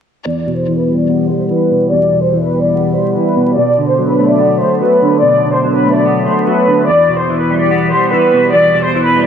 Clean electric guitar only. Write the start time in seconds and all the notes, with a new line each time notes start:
0.26 E2
0.47 B2
0.68 E3
0.88 G3
1.09 B3
1.30 G3
1.50 E3
1.71 B2
1.92 E2
2.12 B2
2.33 E3
2.53 G3
2.74 B3
2.95 G3
3.16 E3
3.36 B2
3.57 B2
3.78 D3
3.99 F#3
4.19 A3
4.40 B3
4.61 A3
4.81 F#3
5.02 D3
5.22 B2
5.43 D3
5.64 F#3
5.85 A3
6.05 B3
6.26 A3
6.47 F#3
6.68 D3
6.88 E2
7.09 B2
7.30 E3
7.50 G3
7.71 B3
7.92 G3
8.13 E3
8.33 B2
8.54 E2
8.74 B2
8.95 E3
9.16 G3